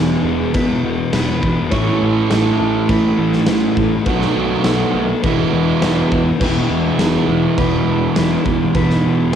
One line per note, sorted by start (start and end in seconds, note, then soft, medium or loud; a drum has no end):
0.00 0.13 E1 loud
0.00 0.52 E2 medium
0.00 1.71 E2 medium
0.00 0.25 B2 medium
0.00 1.71 B2 medium
0.00 0.24 E3 medium
0.00 1.71 E3 medium
0.00 1.72 G#3 medium
0.00 0.23 B3 medium
0.00 1.73 B3 medium
0.00 1.73 E4 medium
0.00 0.25 G#4 medium
0.00 0.54 B4 medium
0.24 0.43 E1 loud
0.24 0.53 B2 soft
0.24 0.54 E3 medium
0.24 0.54 G#4 medium
0.53 0.73 E1 loud
0.53 1.10 E2 medium
0.53 0.83 B2 loud
0.53 0.81 E3 loud
0.53 1.13 B4 medium
0.53 kick loud
0.53 crash medium
0.83 1.02 E1 medium
0.83 1.12 B2 medium
0.83 1.12 E3 medium
1.11 1.32 E1 loud
1.11 1.69 E2 medium
1.11 1.42 B2 medium
1.11 1.40 E3 medium
1.11 1.70 B4 medium
1.11 snare loud
1.11 crash medium
1.41 1.61 E1 loud
1.41 1.70 B2 medium
1.41 1.69 E3 medium
1.41 kick medium
1.71 1.91 A1 loud
1.71 2.29 A2 medium
1.71 4.06 A2 medium
1.71 4.06 E3 medium
1.71 2.02 E3 medium
1.71 2.00 A3 medium
1.71 4.06 A3 medium
1.71 4.07 C#4 medium
1.71 4.07 E4 medium
1.71 2.30 C#5 medium
1.71 kick loud
1.71 crash medium
2.01 2.21 A1 loud
2.01 2.30 E3 medium
2.01 2.31 A3 medium
2.30 2.50 A1 medium
2.30 2.87 A2 medium
2.30 2.61 E3 medium
2.30 2.59 A3 medium
2.30 2.58 A4 medium
2.30 snare loud
2.30 crash medium
2.59 2.78 A1 loud
2.59 2.88 E3 medium
2.59 2.89 A3 medium
2.59 2.89 A4 medium
2.88 3.07 A1 loud
2.88 3.47 A2 loud
2.88 3.19 E3 loud
2.88 3.17 A3 medium
2.88 3.48 B4 medium
2.88 kick loud
2.88 crash medium
3.18 3.37 A1 medium
3.18 3.48 E3 medium
3.18 3.49 A3 medium
3.33 snare soft
3.47 3.67 A1 medium
3.47 4.05 A2 medium
3.47 3.78 E3 medium
3.47 3.76 A3 medium
3.47 4.06 B4 medium
3.47 snare loud
3.47 crash medium
3.77 3.95 A1 medium
3.77 4.06 E3 medium
3.77 4.05 A3 medium
3.77 kick medium
4.06 4.25 B1 loud
4.06 4.62 B2 medium
4.06 5.23 B2 medium
4.06 5.24 D#3 medium
4.06 4.36 F#3 medium
4.06 5.24 A3 medium
4.06 4.34 B3 medium
4.06 5.25 B3 medium
4.06 5.25 F#4 medium
4.06 4.64 B4 medium
4.06 kick loud
4.06 crash medium
4.21 snare soft
4.36 4.54 B1 medium
4.36 4.64 F#3 medium
4.36 4.64 B3 medium
4.64 4.83 B1 medium
4.64 5.21 B2 medium
4.64 4.95 F#3 medium
4.64 4.93 B3 medium
4.64 4.93 A4 medium
4.64 snare loud
4.64 crash medium
4.94 5.13 B1 loud
4.94 5.23 F#3 soft
4.94 5.22 B3 medium
4.94 5.23 A4 medium
5.22 5.42 E1 medium
5.22 5.81 E2 medium
5.22 6.40 E2 medium
5.22 5.54 B2 medium
5.22 6.40 B2 medium
5.22 6.41 E3 medium
5.22 5.52 E3 loud
5.22 6.42 G#3 medium
5.22 6.42 B3 medium
5.22 6.42 E4 medium
5.22 5.80 B4 medium
5.22 kick loud
5.22 crash medium
5.53 5.71 E1 medium
5.53 5.83 B2 medium
5.53 5.83 E3 medium
5.82 6.01 E1 medium
5.82 6.38 E2 medium
5.82 6.12 B2 medium
5.82 6.10 E3 medium
5.82 6.39 B4 medium
5.82 snare loud
5.82 crash medium
6.12 6.30 E1 medium
6.12 6.40 B2 medium
6.12 6.39 E3 medium
6.12 kick medium
6.40 6.59 E1 loud
6.40 6.99 E2 medium
6.40 9.35 E2 medium
6.40 6.70 B2 medium
6.40 9.35 B2 medium
6.40 6.69 E3 medium
6.40 9.35 E3 medium
6.40 9.35 G#3 medium
6.40 9.35 B3 medium
6.40 7.59 B4 medium
6.40 kick loud
6.40 crash loud
6.40 crash medium
6.44 9.35 E4 medium
6.69 6.89 E1 medium
6.69 6.99 B2 medium
6.69 7.01 E3 medium
6.99 7.17 E1 medium
6.99 7.56 E2 medium
6.99 7.29 B2 medium
6.99 7.28 E3 medium
6.99 7.29 G#4 medium
6.99 snare loud
6.99 crash medium
7.28 7.46 E1 medium
7.28 7.57 B2 medium
7.28 7.58 E3 medium
7.28 9.35 G#4 medium
7.57 7.77 E1 medium
7.57 8.15 E2 loud
7.57 7.88 B2 medium
7.57 7.87 E3 loud
7.57 8.17 B4 medium
7.57 kick loud
7.57 crash medium
7.87 8.06 E1 medium
7.87 8.15 B2 medium
7.87 8.17 E3 medium
8.16 8.36 E1 medium
8.16 8.73 E2 medium
8.16 8.46 B2 medium
8.16 8.45 E3 medium
8.16 8.76 B4 medium
8.16 snare loud
8.16 crash medium
8.46 8.64 E1 medium
8.46 8.74 B2 medium
8.46 8.76 E3 medium
8.46 kick medium
8.74 8.93 E1 medium
8.74 9.32 E2 medium
8.74 9.05 B2 medium
8.74 9.04 E3 medium
8.74 9.33 B4 loud
8.74 kick loud
8.74 crash medium
8.90 snare soft
9.04 9.24 E1 loud
9.04 9.33 B2 medium
9.04 9.35 E3 medium